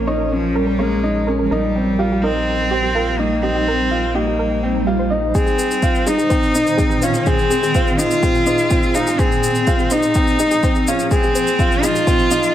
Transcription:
Already playing: A#1 F3 C#4 A#4 C#5
0.07 D#4 C#5
0.32 F3 C#4
0.55 G3 A#4
0.67 A#4
0.79 G#3 A#3 C#5
1.03 D#4
1.27 C#4 A#4
1.39 A#4
1.44 G#3
1.49 A#1 G3 D#4 A#4
1.75 C4
1.98 D#4 F4 G4
2.12 G4
2.22 C4 D#4 A#4
2.71 C4 G4
2.83 G4 C5
2.95 F4 A#4
3.18 A#3 D#4
3.41 C4 D#4 G4
3.55 G4
3.67 C4 A#4
3.91 F4
4.14 A#3 D#4 G4
4.27 G4
4.39 A#4
4.63 C4
4.87 F4 G4
4.99 C5
5.10 D#4 D#5
5.34 A#2 C4 G#4, kick, shaker
5.39 D#3
5.46 G#4, shaker
5.58 C5, shaker
5.65 C4
5.71 shaker
5.83 F4, kick, shaker
5.87 G#4
5.95 shaker
6.06 D#4 G#4, shaker
6.18 G#4, shaker
6.30 C4 C5, kick, shaker
6.43 shaker
6.55 D#4, shaker
6.67 shaker
6.77 C4 G#4, kick, shaker
6.90 G#4, shaker
7.02 C#4 F4 C5, shaker
7.14 shaker
7.26 C4 G#4, kick, shaker
7.39 shaker
7.50 G#4, shaker
7.63 G#4, shaker
7.75 F4 C5, kick, shaker
7.87 shaker
7.98 D#4 F4, shaker
8.11 shaker
8.23 C4 G#4, kick, shaker
8.35 G#4, shaker
8.46 D#4 C5, shaker
8.58 shaker
8.70 C4, kick, shaker
8.83 shaker
8.95 D#4 F4 G#4, shaker
9.07 G#4, shaker
9.19 C4 G#4 C5, kick, shaker
9.32 shaker
9.43 shaker
9.52 F3, shaker
9.67 F4 G#4, kick, shaker
9.79 G#4, shaker
9.90 D#4 C5, shaker
10.03 shaker
10.15 C4, kick, shaker
10.27 shaker
10.39 D#4 G#4, shaker
10.51 G#4, shaker
10.63 C4 C5, kick, shaker
10.75 shaker
10.87 C#4 F4, shaker
10.99 shaker
11.11 C4 G#4, kick, shaker
11.23 G#4, shaker
11.35 C5, shaker
11.47 shaker
11.59 F4, kick, shaker
11.72 shaker
11.83 D#4 F4 G#4, shaker
11.95 G#4, shaker
12.07 C4 C5, kick, shaker
12.19 shaker
12.31 D#4 F5, shaker
12.43 shaker

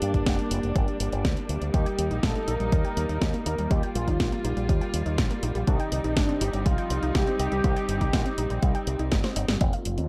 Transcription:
Already playing: G3 A#3 D4 G4 D5
0.02 G2, closed hi-hat
0.14 G1, kick, closed hi-hat
0.26 F1, kick, snare, closed hi-hat
0.39 closed hi-hat
0.51 F1, closed hi-hat
0.63 F1, closed hi-hat
0.76 G1, kick, closed hi-hat
0.88 closed hi-hat
1.00 G1, closed hi-hat
1.12 G1, closed hi-hat
1.25 D2, kick, snare, closed hi-hat
1.37 closed hi-hat
1.49 D2, closed hi-hat
1.61 D2, closed hi-hat
1.74 D#2 G3 D#4 G4, kick, closed hi-hat
1.86 G5, closed hi-hat
1.98 D#2 G3, closed hi-hat
2.11 A#1 D#4, closed hi-hat
2.23 A#1 A4, kick, snare, closed hi-hat
2.35 A#3, closed hi-hat
2.48 A#1 D#4 A#4, closed hi-hat
2.60 A#1 G3, closed hi-hat
2.72 D#2 G3, kick, closed hi-hat
2.85 G5, closed hi-hat
2.97 D#2 G3, closed hi-hat
3.09 D#2 D#4, closed hi-hat
3.22 D#2 D#4, kick, snare, closed hi-hat
3.34 A#3, closed hi-hat
3.46 D#2 D#4 A#4, closed hi-hat
3.58 D#2 G3, closed hi-hat
3.71 D#2 G3 F4 G4, kick, closed hi-hat
3.83 G5, closed hi-hat
3.95 A#1 G3 F4, closed hi-hat
4.08 D#2 D#4, kick, closed hi-hat
4.20 A#1 D#4, kick, snare, closed hi-hat
4.32 A#3, closed hi-hat
4.44 A#1 D#4, closed hi-hat
4.57 A#1 G3, closed hi-hat
4.69 D#2 G3, kick, closed hi-hat
4.81 G5, closed hi-hat
4.94 D#2 G3, closed hi-hat
5.06 D#2 D#4, closed hi-hat
5.18 A#1 D#4, kick, snare, closed hi-hat
5.31 A#3, closed hi-hat
5.43 A#1 D#4, closed hi-hat
5.55 A#1 G3, closed hi-hat
5.67 C2 G3 C4 D#4, kick, closed hi-hat
5.80 G5, closed hi-hat
5.92 C2 G3, closed hi-hat
6.04 A#1 D#4, closed hi-hat
6.16 G1 D4 D#4, kick, snare, closed hi-hat
6.29 C4, closed hi-hat
6.41 G1 D#4 G4, closed hi-hat
6.53 G1 G3, closed hi-hat
6.66 C2 G3 F4, kick, closed hi-hat
6.78 G5, closed hi-hat
6.90 C2 G3, closed hi-hat
7.02 C2 D#4, closed hi-hat
7.15 C2 D#4 G4, kick, snare, closed hi-hat
7.27 C4, closed hi-hat
7.39 C2 D#4 G4, closed hi-hat
7.52 C2 G3, closed hi-hat
7.64 C2 G3, kick, closed hi-hat
7.76 G5, closed hi-hat
7.89 G1 G3, closed hi-hat
8.01 C2 D#4, kick, closed hi-hat
8.13 A#1 D#4, kick, snare, closed hi-hat
8.26 C4, closed hi-hat
8.38 A#1 D#4, closed hi-hat
8.50 A#1 G3, closed hi-hat
8.62 C2 G3, kick, closed hi-hat
8.75 G5, closed hi-hat
8.87 C2 G3, closed hi-hat
8.99 C2 D#4, closed hi-hat
9.12 G1 D#4, kick, snare, closed hi-hat
9.24 C4, snare, closed hi-hat
9.36 G1 D#4, closed hi-hat
9.48 G1 G3, snare, closed hi-hat
9.61 F1 F3 A3 C4 F4 A4 F5, kick, closed hi-hat, riser
9.73 F5, closed hi-hat
9.85 F1 F3, closed hi-hat
9.98 D#2 C4, closed hi-hat

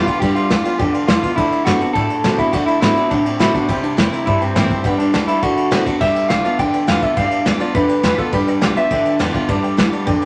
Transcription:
Already playing: G2 D3 E3
0.06 B3 F4 B4 D5 G5, kick, ride
0.20 G1 G2 D3 G3 G4 B4 D5 G5, kick, ride
0.35 F4 B4 D5 E5, muted upright bass stroke, ride
0.50 D2 G2 E3 G3 B3 F4 B4 D5 G5, snare, ride
0.64 B3 F4 B4 D5 G5, muted upright bass stroke, ride
0.78 F2 G2 D3 G4 B4 D5 G5, kick, ride
0.93 F4 B4 D5 G5, muted upright bass stroke, ride
1.07 E2 G2 E3 G3 B3 F4 B4 D5 G5, snare, ride
1.23 B3 F4 B4 D5 E5, kick, ride
1.36 D2 D3 A3 E4 A4 D5 F#5, kick, ride
1.51 A4 D5 E5, muted upright bass stroke, ride
1.65 F#2 D3 A3 B3 C4 F#4 A4 D5 A5, snare, ride
1.80 C4 F#4 A4 D5 A5, muted upright bass stroke, snare, ride
1.93 A2 D3 A3 A4 D5 F#5, kick, ride
2.10 A4 D5 F#5, ride
2.24 B2 D3 A3 B3 C4 F#4 A4 D5 F#5, snare, ride
2.38 C4 E4 F#4 A4 D5 E5, muted upright bass stroke, kick, ride
2.52 D2 D3 A3 F#4 A4 D5 F#5, kick, ride
2.66 E4 A4 D5 A5, muted upright bass stroke, ride
2.81 A2 D3 A3 B3 C4 E4 F#4 A4 D5 E5, snare, ride
2.96 C4 F#4 A4 D5 F#5, muted upright bass stroke, ride
3.10 A2 C3 D3 A3 D4 A4 D5 F#5, kick, ride
3.25 C4 A4 D5 F#5, muted upright bass stroke, ride
3.39 B2 D3 A3 B3 C4 E4 F#4 A4 D5 F#5, snare, ride
3.54 C4 D4 F#4 A4 D5 F#5, kick, ride
3.68 C2 C3 G3 C4 C5 E5 G5, kick, ride
3.83 D4 C5 E5 G5, muted upright bass stroke, ride
3.97 E2 C3 E3 A3 A#3 C4 E4 C5 G5, snare, ride
4.12 C4 E4 C5 E5 A#5, snare, ride
4.26 G2 C3 G3 E4 C5 E5 A5, kick, ride
4.41 C4 C5 E5 G5, muted upright bass stroke, ride
4.56 A2 C3 E3 A3 A#3 C4 E4 C5 E5 G5, snare, ride
4.70 C4 E4 C5 E5 G5, muted upright bass stroke, kick, ride
4.84 G1 G2 D3 G3 B3 B4 D5 G5, kick, ride
4.98 D4 B4 D5 G5, ride
5.13 D2 G2 E3 G3 B3 D4 F4 B4 D5 G5, snare, ride
5.27 E4 B4 D5 A5, muted upright bass stroke, ride
5.42 D2 D3 A3 F#4 A4 D5 F#5, kick, ride
5.57 A4 D5 F#5, muted upright bass stroke, ride
5.71 B2 D3 A3 B3 C4 F#4 A4 D5 F#5, snare, ride
5.86 C4 F#4 A4 D5 F#5, muted upright bass stroke, kick, ride
6.00 G1 G2 D3 G3 B4 D5 E5 G5, kick, crash
6.14 B4 D5 G5, muted upright bass stroke, ride
6.29 B1 G2 E3 G3 B3 F4 B4 D5 F5 G5, snare, ride
6.43 B3 F4 B4 D5 A5, snare, ride
6.58 D2 G2 D3 B4 D5 G5 A5, kick, ride
6.73 B4 D5 G5, muted upright bass stroke, ride
6.87 E2 E3 G3 B3 F4 B4 D5 F5 G5, snare, ride
7.02 B3 F4 B4 D5 E5 G5, kick, ride
7.16 G1 G2 D3 G3 B4 D5 F5 G5, kick, ride
7.31 B4 D5 A5, ride
7.45 D2 G2 E3 G3 B3 F4 B4 D5 G5, snare, ride
7.59 B3 F4 B4 D5 A5, muted upright bass stroke, ride
7.74 F2 G2 D3 B4 D5 E5, kick, ride
7.88 B4 D5 G5, muted upright bass stroke, ride
8.03 E2 G2 E3 G3 B3 F4 B4 D5 G5, snare, ride
8.15 F4 A4 B4 D5 A5, kick, ride
8.19 B3
8.32 G1 G2 D3 G3 B4 D5 G5, kick, ride
8.47 B4 D5 G5, ride
8.61 B1 G2 E3 G3 B3 F4 B4 D5 G5, snare, ride
8.76 B3 F4 B4 D5 E5 G5, muted upright bass stroke, snare, ride
8.90 D2 G2 D3 B4 D5 G5, kick, ride
9.05 B4 D5 G5, muted upright bass stroke, ride
9.19 E2 G2 E3 G3 B3 F4 B4 D5 G5, snare, ride
9.33 B3 F4 B4 D5 G5, kick, ride
9.48 G1 G2 D3 G3 B4 D5 A5, kick, ride
9.62 B4 D5 G5, ride
9.77 D2 G2 E3 G3 B3 F4 B4 D5 G5, snare, ride
9.92 B4 D5 A5, muted upright bass stroke, ride
10.06 F2 G2 D3 B4 D5 G5, kick, ride
10.21 B4 D5 G5, ride

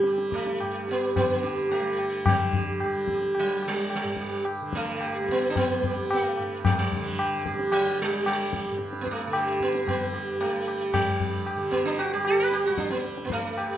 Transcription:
Already playing: G2 D3
0.00 G3, tabla te
0.06 G4
0.18 tabla te
0.32 A3 G4, tabla ke
0.47 tabla te
0.60 G2 G4, tabla na
0.88 B3 G4, tabla te
1.16 B3 G4, tabla na, tabla ge
1.20 D3
1.43 G4, tabla te
1.71 A3 G4, tabla na
1.81 G3
1.99 tabla na
2.26 D3 G3, tabla na, tabla ge
2.53 G4, tabla ge
2.80 G4, tabla na
2.84 G3
3.08 tabla ke
3.13 G4
3.21 tabla te
3.35 tabla na
3.39 F#3
3.44 G3
3.62 tabla na
3.68 G3
3.90 tabla na
3.95 G3
4.04 G2
4.17 G4, tabla ke
4.45 tabla na
4.62 D3
4.73 A3, tabla ke
5.00 G4, tabla na
5.21 G3
5.29 B3, tabla ke
5.42 tabla te
5.50 D4
5.56 B3, tabla na, tabla ge
5.80 G3, tabla ge
5.85 G4
6.11 A3, tabla na
6.37 G2, tabla na
6.65 G3, tabla na, tabla ge
6.72 A3
6.79 G3
6.92 tabla ge
6.96 D3
7.19 tabla na
7.46 G4, tabla ke
7.54 G3
7.59 tabla te
7.72 F#3, tabla na
7.99 G3, tabla na
8.11 G3
8.26 G3, tabla na
8.53 G4, tabla ke
8.71 G2
8.78 tabla te
8.93 tabla te
9.01 B3
9.07 tabla ke
9.11 A3
9.21 tabla te
9.27 D3
9.33 G4, tabla na
9.60 B3, tabla ke
9.74 tabla te
9.86 G3 B3, tabla na, tabla ge
10.13 G4, tabla te
10.40 G3 A3, tabla na
10.66 G4, tabla na
10.93 G3, tabla na, tabla ge
11.00 G2
11.20 tabla ge
11.46 G4, tabla na
11.57 D3
11.71 B3, tabla ke
11.85 D4, tabla te
11.98 F#4, tabla na
12.13 G3 G4
12.25 A4, tabla na
12.39 B4
12.52 G4, tabla te
12.64 F#4, tabla te
12.69 G3
12.78 D4, tabla ke
12.90 B3, tabla te
13.04 tabla te
13.17 tabla te
13.25 G2 B3
13.30 A3, tabla ke
13.44 tabla te
13.58 G4, tabla na

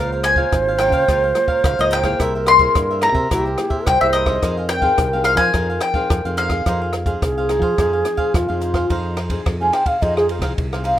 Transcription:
Already playing: C#2 C#3 G#3 A#3 F4 A#4 B4 F5
0.00 C#5 F5
0.10 A#4 C5 C#5 F5
0.23 G#5, muted cavaquinho stroke, cross-stick, closed hi-hat
0.36 G#3 A#3 F4 A#4 C#5 F5, kick
0.52 G#1 G#2, kick, cross-stick, closed hi-hat
0.68 A#4 C#5 F5
0.79 G#3 A#3 F4 A#4 C#5 F5 G5, cross-stick, closed hi-hat
0.89 C#3 F5, kick, closed hi-hat
0.94 A#4 C#5
1.08 C#2 C#3 G#3 A#3 F4 A#4 C#5 F5, kick, cross-stick, closed hi-hat
1.23 A#4 C#5 F5
1.35 G#3 A#3 F4, muted cavaquinho stroke, cross-stick, closed hi-hat
1.48 A#4 C#5 F5, kick
1.64 C#2 G#2 F5, kick, cross-stick, closed hi-hat
1.79 C#2 G#3 A#3 F4 A#4 C#5 D#5 F5, closed hi-hat
1.91 F4 A#4 C#5 F5 G5, closed hi-hat
2.03 A#3 E4 G#4 A#4 C#5 F5, kick, cross-stick, closed hi-hat
2.19 C2 C3 E4 A#4 C5 E5, kick, cross-stick, closed hi-hat
2.35 A#4 C5 E5
2.46 C6, cross-stick, closed hi-hat
2.59 A#3 E4 G#4 A#4 C5 E5, kick, closed hi-hat
2.75 G2, kick, cross-stick, closed hi-hat
2.91 A#4 C5 E5
3.01 A#3 E4 G#4 A#4 C5 E5 A#5, cross-stick, closed hi-hat
3.12 C3 A#4 C5 E5, kick
3.31 C2 C3 A#3 E4 G4 G#4 A#4 C5 E5, kick, cross-stick, closed hi-hat
3.45 A#4 C5 E5
3.58 A#3 E4 G#4, muted cavaquinho stroke, cross-stick, closed hi-hat
3.70 A#4 C5 E5, kick
3.86 C2 G2 C5 G5, kick, cross-stick, closed hi-hat
4.01 C2 A#3 E4 G#4 A#4 C5 E5
4.13 E4 A#4 C5 D#5 E5, closed hi-hat
4.26 C4 D#4 G#4 A#4 C5 E5, kick, cross-stick
4.36 C5
4.42 F2 F3 D#4 G#4 A#4 C5 F5, kick, cross-stick, closed hi-hat
4.57 G#4 C5 F5
4.69 G5, cross-stick, closed hi-hat
4.82 C4 D#4 G#4 C5 F5, kick
4.98 C2 C3, kick, cross-stick, closed hi-hat
5.13 C4 D#4 G#4 C5 F5
5.24 D#4 G#4 C5 F5, cross-stick, closed hi-hat
5.35 F3 C5 F5 G#5, kick, closed hi-hat
5.40 G#4
5.54 F2 F3 C4 D#4 G#4 C5 F5, kick, cross-stick, closed hi-hat
5.70 G#4 C5 F5
5.81 G5, cross-stick, closed hi-hat
5.94 C4 D#4 G#4 C5 F5, kick
6.10 F2 C3, kick, cross-stick, closed hi-hat
6.25 F2 C4 D#4 G#4 C5 F5, closed hi-hat
6.37 D#4 G#4 C5 F5, closed hi-hat
6.49 C4 D#4 G#4 C5 F5, kick, cross-stick, closed hi-hat
6.66 F2 F3 C4 D#4 G#4 C5 F5, kick, cross-stick, closed hi-hat
6.81 G#4 C5 F5
6.93 muted cavaquinho stroke, cross-stick, closed hi-hat
7.06 C4 D#4 G#4 C5 F5, kick, closed hi-hat
7.22 C2 C3 G#4, kick, cross-stick, closed hi-hat
7.38 G#4 C5 F5
7.49 C4 D#4 G#4 C5 F5, cross-stick, closed hi-hat
7.59 F3 G#4 C5 F5, kick
7.78 F2 F3 C4 D#4 G#4 C5 F5, kick, cross-stick, closed hi-hat
7.93 G#4 C5 F5
8.05 C4 D#4 G#4, muted cavaquinho stroke, cross-stick, closed hi-hat
8.17 G#4 C5 F5, kick
8.34 F2 C3 F4, kick, cross-stick, closed hi-hat
8.48 F2 C4 D#4 G#4 C5 F5
8.61 D#4 G#4 C5 F5, closed hi-hat
8.74 G#4 C5 F5, kick, cross-stick
8.90 F2 F3 C4 D#4 G#4 C5 F5, kick, ride
9.17 D#4 G#4 C5 F5, cross-stick, ride
9.30 C4 D#4 G#4 C5 F5, kick, ride
9.46 F2 C3, kick, cross-stick, ride
9.61 C4 D#4 G#4 C5 F5 G#5
9.73 D#4 G#4 C5 F5 G5, cross-stick, ride
9.85 C4 D#4 G#4 C5 F5, kick, ride
10.02 F2 F3 C4 D#4 G#4 C5 D#5 F5, kick, ride
10.17 G#4, cross-stick
10.29 D#4 G#4 C5 F5, ride
10.39 C2 C4 D#4 G#4 C5 F5, kick, cross-stick, ride
10.58 C2 C3, kick, ride
10.73 C4 D#4 G#4 C5 F5, cross-stick
10.84 D#4 G#4 C5 F5, ride
10.95 A#1

